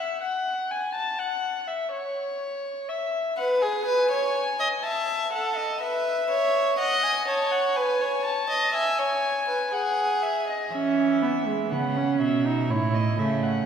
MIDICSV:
0, 0, Header, 1, 5, 480
1, 0, Start_track
1, 0, Tempo, 972447
1, 1426, Time_signature, 4, 2, 24, 8
1, 3829, Tempo, 985222
1, 6704, End_track
2, 0, Start_track
2, 0, Title_t, "Violin"
2, 0, Program_c, 0, 40
2, 0, Note_on_c, 0, 76, 82
2, 105, Note_off_c, 0, 76, 0
2, 108, Note_on_c, 0, 78, 72
2, 350, Note_on_c, 0, 80, 70
2, 357, Note_off_c, 0, 78, 0
2, 465, Note_off_c, 0, 80, 0
2, 468, Note_on_c, 0, 81, 73
2, 586, Note_on_c, 0, 78, 78
2, 594, Note_off_c, 0, 81, 0
2, 827, Note_on_c, 0, 76, 69
2, 834, Note_off_c, 0, 78, 0
2, 944, Note_off_c, 0, 76, 0
2, 947, Note_on_c, 0, 73, 78
2, 1424, Note_on_c, 0, 76, 65
2, 1431, Note_off_c, 0, 73, 0
2, 1661, Note_off_c, 0, 76, 0
2, 1664, Note_on_c, 0, 78, 66
2, 1704, Note_off_c, 0, 78, 0
2, 1782, Note_on_c, 0, 80, 77
2, 2386, Note_on_c, 0, 81, 69
2, 2393, Note_off_c, 0, 80, 0
2, 2623, Note_off_c, 0, 81, 0
2, 2626, Note_on_c, 0, 78, 65
2, 2749, Note_on_c, 0, 75, 67
2, 2756, Note_off_c, 0, 78, 0
2, 2866, Note_on_c, 0, 76, 73
2, 2873, Note_off_c, 0, 75, 0
2, 3346, Note_off_c, 0, 76, 0
2, 3349, Note_on_c, 0, 78, 67
2, 3471, Note_on_c, 0, 80, 61
2, 3478, Note_off_c, 0, 78, 0
2, 3587, Note_off_c, 0, 80, 0
2, 3590, Note_on_c, 0, 81, 69
2, 3712, Note_on_c, 0, 78, 70
2, 3720, Note_off_c, 0, 81, 0
2, 3833, Note_on_c, 0, 80, 79
2, 3841, Note_off_c, 0, 78, 0
2, 4066, Note_off_c, 0, 80, 0
2, 4069, Note_on_c, 0, 81, 72
2, 4310, Note_on_c, 0, 80, 77
2, 4318, Note_off_c, 0, 81, 0
2, 4791, Note_on_c, 0, 78, 72
2, 4798, Note_off_c, 0, 80, 0
2, 5032, Note_on_c, 0, 76, 62
2, 5039, Note_off_c, 0, 78, 0
2, 5151, Note_off_c, 0, 76, 0
2, 5154, Note_on_c, 0, 75, 55
2, 5272, Note_off_c, 0, 75, 0
2, 5276, Note_on_c, 0, 76, 57
2, 5738, Note_off_c, 0, 76, 0
2, 5759, Note_on_c, 0, 78, 55
2, 5993, Note_off_c, 0, 78, 0
2, 5999, Note_on_c, 0, 76, 52
2, 6239, Note_on_c, 0, 73, 59
2, 6246, Note_off_c, 0, 76, 0
2, 6357, Note_on_c, 0, 75, 56
2, 6365, Note_off_c, 0, 73, 0
2, 6475, Note_on_c, 0, 76, 53
2, 6483, Note_off_c, 0, 75, 0
2, 6595, Note_on_c, 0, 78, 50
2, 6602, Note_off_c, 0, 76, 0
2, 6704, Note_off_c, 0, 78, 0
2, 6704, End_track
3, 0, Start_track
3, 0, Title_t, "Violin"
3, 0, Program_c, 1, 40
3, 1668, Note_on_c, 1, 71, 83
3, 1786, Note_on_c, 1, 68, 82
3, 1794, Note_off_c, 1, 71, 0
3, 1902, Note_off_c, 1, 68, 0
3, 1905, Note_on_c, 1, 71, 93
3, 2023, Note_off_c, 1, 71, 0
3, 2025, Note_on_c, 1, 73, 82
3, 2262, Note_off_c, 1, 73, 0
3, 2269, Note_on_c, 1, 75, 89
3, 2308, Note_off_c, 1, 75, 0
3, 2390, Note_on_c, 1, 76, 82
3, 2624, Note_off_c, 1, 76, 0
3, 2629, Note_on_c, 1, 69, 85
3, 2864, Note_off_c, 1, 69, 0
3, 2867, Note_on_c, 1, 71, 90
3, 3103, Note_off_c, 1, 71, 0
3, 3110, Note_on_c, 1, 73, 98
3, 3345, Note_off_c, 1, 73, 0
3, 3350, Note_on_c, 1, 75, 102
3, 3586, Note_off_c, 1, 75, 0
3, 3590, Note_on_c, 1, 73, 92
3, 3831, Note_on_c, 1, 71, 89
3, 3838, Note_off_c, 1, 73, 0
3, 3951, Note_on_c, 1, 73, 81
3, 3959, Note_off_c, 1, 71, 0
3, 4184, Note_off_c, 1, 73, 0
3, 4187, Note_on_c, 1, 75, 84
3, 4305, Note_off_c, 1, 75, 0
3, 4308, Note_on_c, 1, 76, 81
3, 4428, Note_on_c, 1, 73, 82
3, 4435, Note_off_c, 1, 76, 0
3, 4665, Note_off_c, 1, 73, 0
3, 4668, Note_on_c, 1, 71, 77
3, 4787, Note_off_c, 1, 71, 0
3, 4790, Note_on_c, 1, 68, 92
3, 5265, Note_off_c, 1, 68, 0
3, 6704, End_track
4, 0, Start_track
4, 0, Title_t, "Viola"
4, 0, Program_c, 2, 41
4, 5276, Note_on_c, 2, 61, 72
4, 5519, Note_on_c, 2, 59, 56
4, 5526, Note_off_c, 2, 61, 0
4, 5637, Note_on_c, 2, 56, 57
4, 5645, Note_off_c, 2, 59, 0
4, 5757, Note_off_c, 2, 56, 0
4, 5760, Note_on_c, 2, 59, 56
4, 5880, Note_on_c, 2, 61, 53
4, 5888, Note_off_c, 2, 59, 0
4, 6117, Note_on_c, 2, 63, 58
4, 6125, Note_off_c, 2, 61, 0
4, 6235, Note_on_c, 2, 64, 65
4, 6243, Note_off_c, 2, 63, 0
4, 6473, Note_off_c, 2, 64, 0
4, 6475, Note_on_c, 2, 57, 56
4, 6704, Note_off_c, 2, 57, 0
4, 6704, End_track
5, 0, Start_track
5, 0, Title_t, "Cello"
5, 0, Program_c, 3, 42
5, 5276, Note_on_c, 3, 52, 52
5, 5759, Note_on_c, 3, 49, 56
5, 5766, Note_off_c, 3, 52, 0
5, 5998, Note_on_c, 3, 47, 53
5, 6005, Note_off_c, 3, 49, 0
5, 6235, Note_on_c, 3, 45, 61
5, 6243, Note_off_c, 3, 47, 0
5, 6472, Note_off_c, 3, 45, 0
5, 6475, Note_on_c, 3, 49, 52
5, 6704, Note_off_c, 3, 49, 0
5, 6704, End_track
0, 0, End_of_file